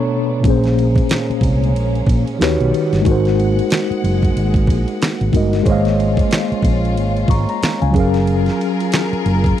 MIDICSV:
0, 0, Header, 1, 6, 480
1, 0, Start_track
1, 0, Key_signature, -5, "major"
1, 0, Tempo, 652174
1, 323, Time_signature, 4, 2, 24, 8
1, 7066, End_track
2, 0, Start_track
2, 0, Title_t, "Tine electric piano"
2, 0, Program_c, 0, 4
2, 0, Control_c, 0, 64, 127
2, 0, Note_on_c, 0, 47, 72
2, 0, Note_on_c, 0, 59, 69
2, 0, Note_on_c, 0, 62, 67
2, 0, Note_on_c, 0, 69, 64
2, 0, Note_on_c, 0, 73, 82
2, 297, Note_on_c, 0, 46, 74
2, 315, Note_on_c, 0, 58, 74
2, 318, Note_off_c, 0, 47, 0
2, 323, Note_off_c, 0, 59, 0
2, 327, Note_off_c, 0, 62, 0
2, 332, Note_off_c, 0, 69, 0
2, 333, Note_on_c, 0, 61, 74
2, 334, Control_c, 0, 64, 0
2, 350, Note_on_c, 0, 68, 70
2, 361, Note_off_c, 0, 73, 0
2, 367, Note_on_c, 0, 72, 83
2, 440, Control_c, 0, 64, 127
2, 1721, Note_off_c, 0, 46, 0
2, 1730, Note_off_c, 0, 58, 0
2, 1739, Note_off_c, 0, 61, 0
2, 1748, Note_off_c, 0, 68, 0
2, 1757, Note_off_c, 0, 72, 0
2, 1757, Note_on_c, 0, 51, 73
2, 1764, Note_on_c, 0, 63, 66
2, 1772, Note_on_c, 0, 66, 70
2, 1774, Control_c, 0, 64, 0
2, 1779, Note_on_c, 0, 67, 67
2, 1785, Note_on_c, 0, 71, 68
2, 1793, Note_on_c, 0, 73, 80
2, 1917, Control_c, 0, 64, 127
2, 2220, Note_on_c, 0, 56, 77
2, 2229, Note_off_c, 0, 63, 0
2, 2238, Note_on_c, 0, 63, 70
2, 2240, Note_off_c, 0, 51, 0
2, 2246, Note_off_c, 0, 66, 0
2, 2251, Note_off_c, 0, 67, 0
2, 2252, Control_c, 0, 64, 0
2, 2254, Note_off_c, 0, 71, 0
2, 2254, Note_on_c, 0, 66, 75
2, 2258, Note_off_c, 0, 73, 0
2, 2270, Note_on_c, 0, 70, 70
2, 2290, Note_on_c, 0, 72, 82
2, 2405, Control_c, 0, 64, 127
2, 3882, Note_off_c, 0, 56, 0
2, 3891, Note_off_c, 0, 63, 0
2, 3899, Note_off_c, 0, 66, 0
2, 3907, Note_off_c, 0, 70, 0
2, 3915, Note_on_c, 0, 56, 60
2, 3917, Note_off_c, 0, 72, 0
2, 3923, Note_on_c, 0, 63, 54
2, 3932, Note_on_c, 0, 66, 50
2, 3941, Note_on_c, 0, 70, 56
2, 3951, Note_on_c, 0, 75, 61
2, 4129, Note_off_c, 0, 56, 0
2, 4137, Note_on_c, 0, 56, 77
2, 4149, Note_on_c, 0, 68, 66
2, 4163, Note_off_c, 0, 63, 0
2, 4164, Note_on_c, 0, 72, 71
2, 4167, Note_off_c, 0, 66, 0
2, 4172, Note_off_c, 0, 70, 0
2, 4172, Control_c, 0, 64, 0
2, 4177, Note_off_c, 0, 75, 0
2, 4178, Note_on_c, 0, 73, 71
2, 4192, Note_on_c, 0, 75, 76
2, 4207, Note_on_c, 0, 77, 87
2, 4302, Control_c, 0, 64, 127
2, 5361, Note_off_c, 0, 77, 0
2, 5373, Note_on_c, 0, 85, 72
2, 5378, Note_on_c, 0, 82, 58
2, 5503, Note_off_c, 0, 85, 0
2, 5505, Note_off_c, 0, 82, 0
2, 5517, Note_on_c, 0, 82, 72
2, 5739, Note_off_c, 0, 82, 0
2, 5754, Note_on_c, 0, 80, 70
2, 5757, Note_on_c, 0, 77, 59
2, 5801, Note_off_c, 0, 56, 0
2, 5807, Note_off_c, 0, 68, 0
2, 5814, Note_off_c, 0, 72, 0
2, 5819, Note_on_c, 0, 54, 73
2, 5821, Note_off_c, 0, 73, 0
2, 5828, Note_off_c, 0, 75, 0
2, 5837, Note_on_c, 0, 61, 68
2, 5851, Control_c, 0, 64, 0
2, 5853, Note_on_c, 0, 68, 71
2, 5870, Note_on_c, 0, 70, 72
2, 5879, Note_off_c, 0, 77, 0
2, 5888, Note_on_c, 0, 77, 78
2, 5977, Note_off_c, 0, 80, 0
2, 5980, Control_c, 0, 64, 127
2, 7066, Note_off_c, 0, 54, 0
2, 7066, Note_off_c, 0, 61, 0
2, 7066, Note_off_c, 0, 68, 0
2, 7066, Note_off_c, 0, 70, 0
2, 7066, Note_off_c, 0, 77, 0
2, 7066, End_track
3, 0, Start_track
3, 0, Title_t, "String section"
3, 0, Program_c, 1, 48
3, 0, Note_on_c, 1, 57, 75
3, 0, Note_on_c, 1, 59, 69
3, 0, Note_on_c, 1, 62, 84
3, 319, Note_off_c, 1, 57, 0
3, 319, Note_off_c, 1, 59, 0
3, 319, Note_off_c, 1, 62, 0
3, 326, Note_on_c, 1, 56, 76
3, 327, Note_on_c, 1, 58, 68
3, 327, Note_on_c, 1, 61, 86
3, 1750, Note_off_c, 1, 56, 0
3, 1751, Note_off_c, 1, 58, 0
3, 1763, Note_on_c, 1, 55, 80
3, 1765, Note_on_c, 1, 51, 80
3, 1766, Note_on_c, 1, 59, 66
3, 1766, Note_on_c, 1, 78, 74
3, 2226, Note_off_c, 1, 61, 0
3, 2238, Note_off_c, 1, 55, 0
3, 2239, Note_off_c, 1, 51, 0
3, 2240, Note_off_c, 1, 59, 0
3, 2241, Note_on_c, 1, 58, 71
3, 2242, Note_on_c, 1, 56, 81
3, 4141, Note_off_c, 1, 78, 0
3, 4143, Note_off_c, 1, 56, 0
3, 4160, Note_on_c, 1, 65, 92
3, 4161, Note_on_c, 1, 61, 76
3, 5813, Note_off_c, 1, 58, 0
3, 5825, Note_off_c, 1, 61, 0
3, 5825, Note_off_c, 1, 65, 0
3, 5840, Note_on_c, 1, 54, 86
3, 5841, Note_on_c, 1, 70, 97
3, 5842, Note_on_c, 1, 65, 76
3, 5843, Note_on_c, 1, 68, 79
3, 7066, Note_off_c, 1, 54, 0
3, 7066, Note_off_c, 1, 65, 0
3, 7066, Note_off_c, 1, 68, 0
3, 7066, Note_off_c, 1, 70, 0
3, 7066, End_track
4, 0, Start_track
4, 0, Title_t, "Fingered electric bass"
4, 0, Program_c, 2, 33
4, 330, Note_on_c, 2, 34, 108
4, 723, Note_off_c, 2, 34, 0
4, 1044, Note_on_c, 2, 36, 94
4, 1293, Note_off_c, 2, 36, 0
4, 1293, Note_on_c, 2, 34, 103
4, 1486, Note_off_c, 2, 34, 0
4, 1525, Note_on_c, 2, 34, 94
4, 1641, Note_off_c, 2, 34, 0
4, 1773, Note_on_c, 2, 39, 101
4, 1886, Note_off_c, 2, 39, 0
4, 1916, Note_on_c, 2, 35, 88
4, 1992, Note_off_c, 2, 35, 0
4, 2154, Note_on_c, 2, 31, 96
4, 2231, Note_off_c, 2, 31, 0
4, 2252, Note_on_c, 2, 32, 121
4, 2644, Note_off_c, 2, 32, 0
4, 2972, Note_on_c, 2, 30, 98
4, 3166, Note_off_c, 2, 30, 0
4, 3213, Note_on_c, 2, 32, 105
4, 3445, Note_off_c, 2, 32, 0
4, 3445, Note_on_c, 2, 34, 97
4, 3561, Note_off_c, 2, 34, 0
4, 3834, Note_on_c, 2, 32, 94
4, 3911, Note_off_c, 2, 32, 0
4, 3926, Note_on_c, 2, 31, 91
4, 4122, Note_off_c, 2, 31, 0
4, 4168, Note_on_c, 2, 32, 109
4, 4562, Note_off_c, 2, 32, 0
4, 4882, Note_on_c, 2, 34, 97
4, 5133, Note_off_c, 2, 34, 0
4, 5133, Note_on_c, 2, 32, 104
4, 5327, Note_off_c, 2, 32, 0
4, 5362, Note_on_c, 2, 32, 101
4, 5479, Note_off_c, 2, 32, 0
4, 5756, Note_on_c, 2, 37, 99
4, 5833, Note_off_c, 2, 37, 0
4, 5850, Note_on_c, 2, 30, 104
4, 6242, Note_off_c, 2, 30, 0
4, 6813, Note_on_c, 2, 30, 99
4, 7007, Note_off_c, 2, 30, 0
4, 7066, End_track
5, 0, Start_track
5, 0, Title_t, "Muted fingered electric bass strokes"
5, 956, Note_on_c, 9, 29, 54
5, 1029, Note_off_c, 9, 29, 0
5, 2874, Note_on_c, 9, 29, 51
5, 2948, Note_off_c, 9, 29, 0
5, 4796, Note_on_c, 9, 29, 53
5, 4870, Note_off_c, 9, 29, 0
5, 5614, Note_on_c, 9, 29, 51
5, 5687, Note_off_c, 9, 29, 0
5, 6717, Note_on_c, 9, 29, 52
5, 6790, Note_off_c, 9, 29, 0
5, 7066, End_track
6, 0, Start_track
6, 0, Title_t, "Drums"
6, 325, Note_on_c, 9, 36, 106
6, 333, Note_on_c, 9, 51, 66
6, 398, Note_off_c, 9, 36, 0
6, 406, Note_off_c, 9, 51, 0
6, 469, Note_on_c, 9, 51, 40
6, 482, Note_on_c, 9, 38, 38
6, 542, Note_off_c, 9, 51, 0
6, 556, Note_off_c, 9, 38, 0
6, 578, Note_on_c, 9, 51, 45
6, 652, Note_off_c, 9, 51, 0
6, 703, Note_on_c, 9, 36, 102
6, 720, Note_on_c, 9, 51, 43
6, 777, Note_off_c, 9, 36, 0
6, 793, Note_off_c, 9, 51, 0
6, 805, Note_on_c, 9, 51, 82
6, 817, Note_on_c, 9, 38, 120
6, 821, Note_on_c, 9, 39, 105
6, 879, Note_off_c, 9, 51, 0
6, 891, Note_off_c, 9, 38, 0
6, 895, Note_off_c, 9, 39, 0
6, 962, Note_on_c, 9, 51, 36
6, 1035, Note_off_c, 9, 51, 0
6, 1038, Note_on_c, 9, 36, 93
6, 1055, Note_on_c, 9, 51, 59
6, 1111, Note_off_c, 9, 36, 0
6, 1128, Note_off_c, 9, 51, 0
6, 1204, Note_on_c, 9, 51, 38
6, 1278, Note_off_c, 9, 51, 0
6, 1297, Note_on_c, 9, 51, 67
6, 1371, Note_off_c, 9, 51, 0
6, 1438, Note_on_c, 9, 51, 33
6, 1512, Note_off_c, 9, 51, 0
6, 1520, Note_on_c, 9, 36, 102
6, 1540, Note_on_c, 9, 51, 55
6, 1594, Note_off_c, 9, 36, 0
6, 1614, Note_off_c, 9, 51, 0
6, 1674, Note_on_c, 9, 51, 42
6, 1748, Note_off_c, 9, 51, 0
6, 1776, Note_on_c, 9, 51, 80
6, 1783, Note_on_c, 9, 38, 110
6, 1787, Note_on_c, 9, 39, 85
6, 1849, Note_off_c, 9, 51, 0
6, 1856, Note_off_c, 9, 38, 0
6, 1861, Note_off_c, 9, 39, 0
6, 1918, Note_on_c, 9, 51, 37
6, 1991, Note_off_c, 9, 51, 0
6, 2019, Note_on_c, 9, 51, 59
6, 2093, Note_off_c, 9, 51, 0
6, 2155, Note_on_c, 9, 51, 39
6, 2157, Note_on_c, 9, 38, 41
6, 2228, Note_off_c, 9, 51, 0
6, 2230, Note_off_c, 9, 38, 0
6, 2247, Note_on_c, 9, 36, 108
6, 2255, Note_on_c, 9, 51, 65
6, 2320, Note_off_c, 9, 36, 0
6, 2328, Note_off_c, 9, 51, 0
6, 2394, Note_on_c, 9, 51, 38
6, 2407, Note_on_c, 9, 38, 36
6, 2467, Note_off_c, 9, 51, 0
6, 2481, Note_off_c, 9, 38, 0
6, 2500, Note_on_c, 9, 51, 46
6, 2573, Note_off_c, 9, 51, 0
6, 2642, Note_on_c, 9, 51, 49
6, 2715, Note_off_c, 9, 51, 0
6, 2727, Note_on_c, 9, 51, 82
6, 2739, Note_on_c, 9, 38, 120
6, 2743, Note_on_c, 9, 39, 104
6, 2800, Note_off_c, 9, 51, 0
6, 2812, Note_off_c, 9, 38, 0
6, 2817, Note_off_c, 9, 39, 0
6, 2883, Note_on_c, 9, 51, 35
6, 2956, Note_off_c, 9, 51, 0
6, 2977, Note_on_c, 9, 51, 61
6, 3051, Note_off_c, 9, 51, 0
6, 3110, Note_on_c, 9, 36, 85
6, 3124, Note_on_c, 9, 51, 39
6, 3183, Note_off_c, 9, 36, 0
6, 3198, Note_off_c, 9, 51, 0
6, 3215, Note_on_c, 9, 51, 67
6, 3289, Note_off_c, 9, 51, 0
6, 3341, Note_on_c, 9, 36, 100
6, 3356, Note_on_c, 9, 51, 35
6, 3415, Note_off_c, 9, 36, 0
6, 3429, Note_off_c, 9, 51, 0
6, 3440, Note_on_c, 9, 36, 102
6, 3461, Note_on_c, 9, 51, 55
6, 3513, Note_off_c, 9, 36, 0
6, 3534, Note_off_c, 9, 51, 0
6, 3590, Note_on_c, 9, 51, 43
6, 3664, Note_off_c, 9, 51, 0
6, 3692, Note_on_c, 9, 51, 77
6, 3699, Note_on_c, 9, 38, 117
6, 3703, Note_on_c, 9, 39, 85
6, 3766, Note_off_c, 9, 51, 0
6, 3772, Note_off_c, 9, 38, 0
6, 3777, Note_off_c, 9, 39, 0
6, 3834, Note_on_c, 9, 51, 38
6, 3908, Note_off_c, 9, 51, 0
6, 3922, Note_on_c, 9, 36, 96
6, 3933, Note_on_c, 9, 51, 59
6, 3995, Note_off_c, 9, 36, 0
6, 4007, Note_off_c, 9, 51, 0
6, 4070, Note_on_c, 9, 51, 42
6, 4072, Note_on_c, 9, 38, 43
6, 4144, Note_off_c, 9, 51, 0
6, 4146, Note_off_c, 9, 38, 0
6, 4163, Note_on_c, 9, 36, 104
6, 4167, Note_on_c, 9, 51, 70
6, 4237, Note_off_c, 9, 36, 0
6, 4241, Note_off_c, 9, 51, 0
6, 4306, Note_on_c, 9, 51, 40
6, 4319, Note_on_c, 9, 38, 38
6, 4379, Note_off_c, 9, 51, 0
6, 4393, Note_off_c, 9, 38, 0
6, 4415, Note_on_c, 9, 51, 45
6, 4489, Note_off_c, 9, 51, 0
6, 4542, Note_on_c, 9, 36, 101
6, 4557, Note_on_c, 9, 51, 45
6, 4616, Note_off_c, 9, 36, 0
6, 4631, Note_off_c, 9, 51, 0
6, 4644, Note_on_c, 9, 51, 82
6, 4656, Note_on_c, 9, 38, 124
6, 4661, Note_on_c, 9, 39, 99
6, 4718, Note_off_c, 9, 51, 0
6, 4730, Note_off_c, 9, 38, 0
6, 4734, Note_off_c, 9, 39, 0
6, 4799, Note_on_c, 9, 51, 34
6, 4873, Note_off_c, 9, 51, 0
6, 4876, Note_on_c, 9, 36, 95
6, 4891, Note_on_c, 9, 51, 63
6, 4949, Note_off_c, 9, 36, 0
6, 4965, Note_off_c, 9, 51, 0
6, 5042, Note_on_c, 9, 51, 38
6, 5115, Note_off_c, 9, 51, 0
6, 5133, Note_on_c, 9, 51, 66
6, 5207, Note_off_c, 9, 51, 0
6, 5274, Note_on_c, 9, 51, 35
6, 5348, Note_off_c, 9, 51, 0
6, 5358, Note_on_c, 9, 36, 102
6, 5379, Note_on_c, 9, 51, 53
6, 5432, Note_off_c, 9, 36, 0
6, 5452, Note_off_c, 9, 51, 0
6, 5511, Note_on_c, 9, 51, 43
6, 5585, Note_off_c, 9, 51, 0
6, 5613, Note_on_c, 9, 51, 80
6, 5619, Note_on_c, 9, 38, 112
6, 5624, Note_on_c, 9, 39, 85
6, 5686, Note_off_c, 9, 51, 0
6, 5693, Note_off_c, 9, 38, 0
6, 5697, Note_off_c, 9, 39, 0
6, 5754, Note_on_c, 9, 51, 37
6, 5827, Note_off_c, 9, 51, 0
6, 5843, Note_on_c, 9, 36, 108
6, 5857, Note_on_c, 9, 51, 64
6, 5917, Note_off_c, 9, 36, 0
6, 5931, Note_off_c, 9, 51, 0
6, 5991, Note_on_c, 9, 51, 43
6, 5993, Note_on_c, 9, 38, 39
6, 6065, Note_off_c, 9, 51, 0
6, 6067, Note_off_c, 9, 38, 0
6, 6090, Note_on_c, 9, 51, 66
6, 6163, Note_off_c, 9, 51, 0
6, 6228, Note_on_c, 9, 51, 38
6, 6242, Note_on_c, 9, 38, 36
6, 6302, Note_off_c, 9, 51, 0
6, 6315, Note_off_c, 9, 38, 0
6, 6338, Note_on_c, 9, 51, 47
6, 6412, Note_off_c, 9, 51, 0
6, 6479, Note_on_c, 9, 51, 48
6, 6553, Note_off_c, 9, 51, 0
6, 6565, Note_on_c, 9, 51, 82
6, 6577, Note_on_c, 9, 38, 122
6, 6582, Note_on_c, 9, 39, 99
6, 6639, Note_off_c, 9, 51, 0
6, 6651, Note_off_c, 9, 38, 0
6, 6655, Note_off_c, 9, 39, 0
6, 6720, Note_on_c, 9, 51, 36
6, 6794, Note_off_c, 9, 51, 0
6, 6814, Note_on_c, 9, 51, 65
6, 6888, Note_off_c, 9, 51, 0
6, 6948, Note_on_c, 9, 36, 86
6, 6963, Note_on_c, 9, 51, 40
6, 7022, Note_off_c, 9, 36, 0
6, 7037, Note_off_c, 9, 51, 0
6, 7066, End_track
0, 0, End_of_file